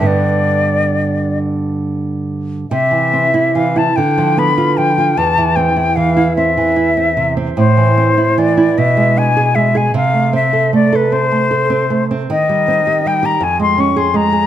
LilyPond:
<<
  \new Staff \with { instrumentName = "Flute" } { \time 6/8 \key c \major \tempo 4. = 50 d''4. r4. | e''4 f''16 a''16 g''8 b''8 g''8 | a''8 g''8 f''8 e''4. | c''4 d''8 e''8 gis''8 e''16 gis''16 |
f''8 e''8 d''16 b'16 c''4~ c''16 r16 | \key c \minor ees''4 g''16 bes''16 aes''16 c'''16 des'''16 c'''16 bes''8 | }
  \new Staff \with { instrumentName = "Nylon-string guitar" } { \time 6/8 \key c \major <g, d b>2. | c16 e16 c'16 e'16 e16 e'16 d16 f16 b16 f'16 f16 f'16 | e,16 e16 c'16 e'16 e16 e'16 c'16 e16 e'16 c'16 c16 c'16 | a,16 e16 c'16 e'16 e16 e'16 b,16 gis16 d'16 gis'16 gis16 gis'16 |
c16 a16 c'16 a'16 a16 a'16 c'16 a16 a'16 c'16 a16 c'16 | \key c \minor ees16 g16 c'16 g'16 g16 g'16 f,16 aes16 des'16 aes'16 aes16 aes'16 | }
>>